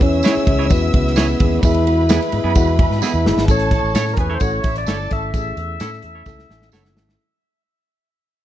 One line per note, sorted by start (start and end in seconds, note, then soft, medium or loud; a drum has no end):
0.00 0.21 E2 loud
0.00 0.19 E3 medium
0.00 0.19 G#3 medium
0.00 0.19 C#4 medium
0.00 0.65 C#4 loud
0.00 0.19 E4 medium
0.00 0.19 B4 medium
0.00 1.60 E5 medium
0.00 1.60 E6 loud
0.00 kick medium
0.00 ride medium
0.23 0.42 E3 medium
0.23 0.42 G#3 medium
0.23 0.42 C#4 medium
0.23 0.33 E4 medium
0.23 0.42 E4 medium
0.23 0.42 G#4 medium
0.23 0.34 G#4 medium
0.23 0.34 C#5 medium
0.23 snare loud
0.23 ride medium
0.23 tambourine loud
0.37 muted fingered electric bass stroke soft
0.37 snare soft
0.47 0.71 C#2 medium
0.47 0.65 E3 medium
0.47 0.65 G#3 medium
0.47 0.65 C#4 medium
0.47 0.65 E4 medium
0.47 0.65 G#4 medium
0.47 kick loud
0.47 ride medium
0.59 0.67 E4 medium
0.59 0.66 G#4 medium
0.59 0.66 C#5 medium
0.66 0.88 E3 loud
0.66 0.88 G#3 medium
0.66 0.72 C#4 medium
0.66 0.88 C#4 medium
0.66 0.88 E4 medium
0.66 0.88 F#4 loud
0.66 tambourine medium
0.70 0.90 E2 loud
0.70 1.18 B3 medium
0.70 kick loud
0.70 ride medium
0.93 1.33 C#2 medium
0.93 1.11 E3 medium
0.93 1.11 G#3 medium
0.93 1.11 C#4 medium
0.93 1.11 E4 medium
0.93 1.11 F#4 medium
0.93 kick loud
0.93 ride medium
1.07 snare soft
1.16 1.34 E3 medium
1.16 1.34 G#3 medium
1.16 1.61 B3 medium
1.16 1.34 C#4 medium
1.16 1.26 E4 medium
1.16 1.34 E4 medium
1.16 1.26 G#4 loud
1.16 1.35 B4 medium
1.16 1.26 C#5 loud
1.16 snare loud
1.16 ride medium
1.16 tambourine loud
1.40 1.60 D#2 medium
1.40 1.58 E3 medium
1.40 1.58 G#3 medium
1.40 1.58 C#4 medium
1.40 1.58 E4 medium
1.40 1.58 G#4 medium
1.40 kick loud
1.40 ride medium
1.63 2.18 E2 loud
1.63 1.81 E3 medium
1.63 1.81 G#3 medium
1.63 1.81 B3 loud
1.63 1.81 E4 medium
1.63 2.99 E4 loud
1.63 1.81 G#4 loud
1.63 3.45 B4 loud
1.63 3.45 B5 loud
1.63 kick loud
1.63 ride medium
1.63 tambourine medium
1.74 ride soft
1.86 2.04 E3 medium
1.86 2.04 G#3 medium
1.86 2.04 B3 medium
1.86 2.04 E4 medium
1.86 2.04 F#4 medium
1.86 ride medium
2.09 2.27 E3 medium
2.09 2.27 G#3 medium
2.09 2.27 B3 medium
2.09 2.19 B3 medium
2.09 2.27 E4 medium
2.09 2.19 E4 loud
2.09 2.27 G#4 medium
2.09 2.19 G#4 medium
2.09 snare loud
2.09 ride medium
2.09 tambourine loud
2.22 ride soft
2.32 2.43 G#2 medium
2.32 2.50 E3 medium
2.32 2.50 G#3 medium
2.32 2.50 B3 medium
2.32 2.50 E4 medium
2.32 2.50 G#4 loud
2.32 ride medium
2.44 2.54 F#2 medium
2.44 2.52 B3 medium
2.44 2.52 E4 medium
2.44 2.51 G#4 medium
2.55 2.85 E2 medium
2.55 2.74 E3 loud
2.55 2.73 G#3 loud
2.55 2.74 B3 loud
2.55 2.74 E4 loud
2.55 2.74 F#4 loud
2.55 kick loud
2.55 ride medium
2.55 tambourine medium
2.79 2.97 E3 medium
2.79 2.96 G#3 medium
2.79 2.97 B3 medium
2.79 2.97 E4 medium
2.79 2.97 G#4 medium
2.79 3.00 G#5 medium
2.79 kick loud
2.79 ride medium
2.90 3.00 G#2 medium
2.90 snare soft
3.02 3.20 E3 loud
3.02 3.20 G#3 medium
3.02 3.11 B3 medium
3.02 3.20 B3 medium
3.02 3.11 E4 medium
3.02 3.20 E4 medium
3.02 3.45 E4 medium
3.02 3.20 G#4 loud
3.02 3.12 G#4 medium
3.02 3.24 F#5 medium
3.02 snare medium
3.02 tambourine loud
3.14 3.23 E2 medium
3.25 3.35 G1 medium
3.25 3.43 E3 medium
3.25 3.43 G#3 medium
3.25 3.43 B3 medium
3.25 3.43 E4 medium
3.25 3.43 G#4 medium
3.25 3.47 E5 medium
3.25 snare medium
3.36 3.46 G#1 medium
3.36 snare loud
3.47 3.78 A1 loud
3.47 3.66 A3 loud
3.47 3.66 C#4 medium
3.47 3.66 E4 medium
3.47 4.14 A4 loud
3.47 3.66 A4 loud
3.47 4.15 C#5 loud
3.47 4.13 A5 loud
3.47 kick loud
3.47 closed hi-hat medium
3.47 tambourine medium
3.59 closed hi-hat medium
3.71 3.89 A3 medium
3.71 3.89 C#4 medium
3.71 3.89 E4 medium
3.71 3.89 A4 medium
3.71 kick medium
3.71 closed hi-hat medium
3.83 3.93 A1 medium
3.94 4.14 A2 loud
3.94 4.12 A3 medium
3.94 4.12 C#4 medium
3.94 4.12 E4 medium
3.94 4.04 E4 medium
3.94 4.12 A4 medium
3.94 4.04 A4 medium
3.94 4.04 C#5 medium
3.94 snare loud
3.94 closed hi-hat loud
3.94 tambourine loud
4.08 snare soft
4.13 4.36 G#4 medium
4.13 4.18 A#4 medium
4.13 4.35 G#5 medium
4.13 closed hi-hat medium
4.17 4.37 E2 medium
4.17 4.35 A3 medium
4.17 4.35 C#4 medium
4.17 4.35 E4 medium
4.17 4.35 A4 medium
4.17 4.34 B4 medium
4.17 kick medium
4.30 4.37 E4 medium
4.30 4.37 A4 medium
4.30 4.37 C#5 medium
4.35 4.41 C5 medium
4.39 4.61 A1 medium
4.39 4.58 A3 loud
4.39 4.58 C#4 medium
4.39 4.59 E4 medium
4.39 4.59 F#4 medium
4.39 4.59 A4 loud
4.39 4.77 C#5 loud
4.39 4.59 F#5 loud
4.39 kick medium
4.39 closed hi-hat medium
4.39 tambourine medium
4.63 4.84 A1 medium
4.63 4.81 A3 medium
4.63 4.82 C#4 medium
4.63 4.82 E4 medium
4.63 4.82 A4 medium
4.63 4.82 E5 loud
4.63 kick medium
4.63 closed hi-hat medium
4.76 5.12 D5 medium
4.76 closed hi-hat medium
4.87 5.06 G1 medium
4.87 5.05 A3 medium
4.87 5.05 C#4 medium
4.87 4.96 E4 medium
4.87 5.05 E4 medium
4.87 5.20 A4 loud
4.87 5.05 A4 medium
4.87 4.97 A4 medium
4.87 4.97 C#5 medium
4.87 5.20 A5 loud
4.87 snare loud
4.87 closed hi-hat medium
4.87 tambourine loud
5.10 5.30 G#1 medium
5.10 5.28 A3 medium
5.10 5.28 C#4 medium
5.10 5.28 E4 medium
5.10 5.28 A4 medium
5.10 6.69 E5 loud
5.10 kick medium
5.10 closed hi-hat medium
5.34 5.53 A1 loud
5.34 5.51 A3 loud
5.34 5.51 C#4 medium
5.34 5.51 E4 medium
5.34 5.51 G#4 loud
5.34 kick loud
5.34 closed hi-hat medium
5.34 tambourine medium
5.57 5.76 E2 medium
5.57 5.75 A3 medium
5.57 5.75 C#4 medium
5.57 5.75 E4 medium
5.57 closed hi-hat medium
5.80 6.00 A2 loud
5.80 5.98 A3 medium
5.80 5.98 C#4 medium
5.80 5.98 E4 medium
5.80 5.89 E4 medium
5.80 5.98 A4 loud
5.80 5.89 A4 medium
5.80 5.90 C#5 medium
5.80 snare loud
5.80 closed hi-hat loud
5.80 tambourine medium
5.93 snare soft
6.02 6.23 E2 medium
6.02 6.21 A3 medium
6.02 6.21 C#4 medium
6.02 6.21 E4 medium
6.02 6.21 A4 loud
6.02 closed hi-hat medium
6.15 6.22 E4 medium
6.15 6.22 A4 medium
6.15 6.22 C#5 medium
6.26 6.46 C#2 medium
6.26 6.44 A3 loud
6.26 6.44 C#4 loud
6.26 6.44 E4 loud
6.26 6.44 A4 loud
6.26 kick medium
6.26 snare medium
6.26 tambourine medium
6.39 snare medium
6.49 6.69 A1 medium
6.49 6.67 A3 medium
6.49 6.67 C#4 medium
6.49 6.67 E4 medium
6.49 6.67 A4 medium
6.49 6.71 G#5 medium
6.49 snare medium
6.62 snare medium
6.72 6.95 F#1 medium
6.72 6.90 A3 medium
6.72 6.90 C#4 medium
6.72 6.82 E4 medium
6.72 6.90 E4 medium
6.72 6.82 A4 medium
6.72 6.90 A4 loud
6.72 6.82 C#5 medium
6.72 6.94 F#5 medium
6.72 snare medium
6.72 tambourine loud
6.85 snare medium
6.95 7.15 G#1 medium
6.95 7.13 A3 medium
6.95 7.13 C#4 medium
6.95 7.13 E4 medium
6.95 7.13 A4 medium
6.95 7.17 E5 medium
6.95 snare loud
7.09 snare medium